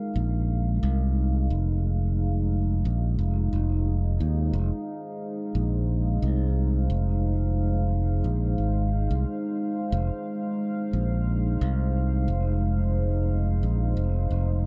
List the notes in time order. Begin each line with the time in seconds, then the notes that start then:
Already playing: G#3 D#4 A#4 F5
0.16 A#1
0.35 C5
0.83 C2
1.50 F1
2.85 A#1
3.19 F1
3.53 F1
4.20 D#2
4.53 F1
5.55 A#1
6.22 C2
6.90 F1
8.24 A#1
8.58 G#1
9.11 C2
9.92 F1
10.93 A#1
11.61 C2
12.28 F1
13.63 A#1
13.97 F1
14.31 F1